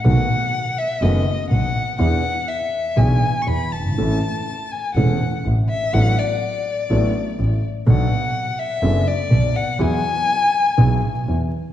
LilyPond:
<<
  \new Staff \with { instrumentName = "Violin" } { \time 4/4 \key e \mixolydian \tempo 4 = 123 fis''4. e''8 dis''4 fis''4 | fis''4 e''4 gis''8.~ gis''32 cis'''32 b''8 a''8~ | a''4. gis''8 fis''4 r8 e''8 | fis''8 d''2. r8 |
fis''4. e''4 d''4 fis''8 | gis''2. r4 | }
  \new Staff \with { instrumentName = "Grand piano" } { \clef bass \time 4/4 \key e \mixolydian <b,, b, dis a b fis'>8 r4. <fis,, fis, dis a b fis'>8 r8 <b,, b,>8 r8 | <e, e b d' gis'>8 r4. <b,, b, e b d' gis'>8 r8 <e, e>8 r32 fis,,32 g,,32 gis,,32 | <a,, a, e a cis' a'>8 r4. <e,, e, e a cis' a'>8 r8 <a,, a,>8 r8 | <a,, a, fis b d' a'>8 r4. <a,, a, fis b d' a'>8 r8 <a,, a,>8 r8 |
<b,, b, fis b d' a'>8 r4. <fis,, fis, fis b d' a'>8 r8 <b,, b,>8 r8 | <e, e fis b e' gis'>8 r4. <b,, b, fis b e' gis'>8 r8 <e, e>8 r8 | }
  \new Staff \with { instrumentName = "Double bass" } { \clef bass \time 4/4 \key e \mixolydian b,,8 r4. fis,,8 r8 b,,8 r8 | e,8 r4. b,,8 r8 e,8 g,,8 | a,,8 r4. e,,8 r8 a,,8 r8 | a,,8 r4. a,,8 r8 a,,8 r8 |
b,,8 r4. fis,,8 r8 b,,8 r8 | e,8 r4. b,,8 r8 e,8 r8 | }
>>